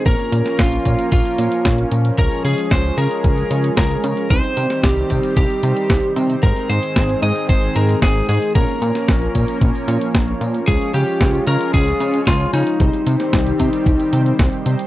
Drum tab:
HH |xxxxxxxxxxxxxxxx|xxxxxxxxxxxxxxxx|xxxxxxxxxxxxxxxx|xxxxxxxxxxxxxxxx|
TB |xxxxxxxxxxxxx-xx|xxxxxxxxxxxxx-xx|xxxxxxxxxxxxx-xx|xxxxxxxxxxxxx-xx|
SD |---oo-------o---|----o-------o---|---oo-------o---|----o-------o---|
BD |o---o-o-o---o---|o---o---o---o---|o---o-o-o---o---|o---o---o---o---|

HH |xxxxxxxxxxxxxxxx|xxxxxxxxxxxxxxxx|xxxxxxxxxxxxxxxx|
TB |xxxxxxxxxxxxx-xx|xxxxxxxxxxxxx-xx|xxxxxxxxxxxxxxxx|
SD |---oo-------o---|----o-------o---|---oo-------o---|
BD |o---o-o-o---o---|o---o---o---o---|o---o-o-o---o---|